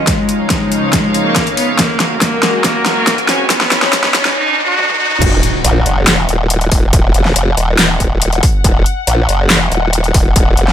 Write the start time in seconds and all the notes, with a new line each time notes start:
Already playing: F4 D#5, riser
0.07 C#2 C#3 F3 G#3 D#4, kick, snare, closed hi-hat
0.16 C#5 F5
0.29 closed hi-hat
0.50 G#3, kick, snare, closed hi-hat
0.72 closed hi-hat
0.93 G#3, kick, snare, closed hi-hat
1.14 closed hi-hat
1.25 A#3
1.36 kick, snare, closed hi-hat
1.47 closed hi-hat
1.57 B3, open hi-hat
1.79 F#2 F#3 G#3 A#3 F#4, kick, snare, closed hi-hat
1.92 A#4
2.00 snare, closed hi-hat
2.22 A#3, kick, snare, closed hi-hat
2.43 snare, closed hi-hat
2.56 G#5
2.64 A#3, kick, snare, closed hi-hat
2.86 snare, closed hi-hat
2.97 A#3
3.07 kick, snare, closed hi-hat
3.18 closed hi-hat
3.29 C#4, snare, open hi-hat
3.50 B2 B3 C#4 D#4, kick, snare, closed hi-hat
3.61 snare
3.67 C#5 B5
3.72 snare, closed hi-hat
3.83 snare
3.93 B3, kick, snare, closed hi-hat
4.04 snare
4.15 snare, closed hi-hat
4.25 snare
4.36 D#4
4.68 F#4
4.79 high tom
4.90 high tom
5.00 F#4
5.11 mid tom
5.22 D#1, kick, closed hi-hat, crash, impact
5.35 F#5
5.43 closed hi-hat
5.64 A#1, closed hi-hat
5.86 F#1, closed hi-hat
6.07 snare, clap, closed hi-hat
6.29 D#1, closed hi-hat
6.50 closed hi-hat
6.61 closed hi-hat
6.72 D#1, kick, open hi-hat
6.93 D#1, kick, closed hi-hat
7.14 F1, closed hi-hat
7.25 snare
7.36 F1, closed hi-hat
7.57 D#1, closed hi-hat
7.79 snare, clap, closed hi-hat
8.00 D#1, kick, closed hi-hat
8.22 closed hi-hat
8.33 closed hi-hat
8.43 kick, open hi-hat
8.64 D#1, kick, closed hi-hat
8.86 closed hi-hat
9.07 A#1, closed hi-hat
9.29 F#1, closed hi-hat
9.50 snare, clap, closed hi-hat
9.72 D#1, closed hi-hat
9.93 closed hi-hat
10.04 closed hi-hat
10.14 D#1, kick, open hi-hat
10.36 D#1, kick, closed hi-hat
10.57 F1, closed hi-hat
10.68 snare